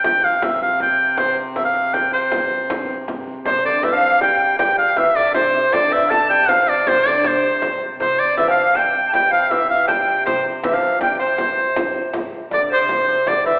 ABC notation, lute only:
X:1
M:3/4
L:1/16
Q:1/4=159
K:C
V:1 name="Lute" clef=bass
z12 | z12 | z12 | C,2 D,2 E, F,3 G,4 |
G,4 E,2 D,2 C,4 | D,2 E,3/2 _B,/2 A,2 G,2 F,4 | C,2 D,2 C,6 z2 | C,4 E, F,3 G,4 |
G,2 F,2 E,4 G,4 | C,2 z2 E, F,3 G,2 C,2- | C,8 z4 | D,2 C,4 C,2 D,2 E,2 |]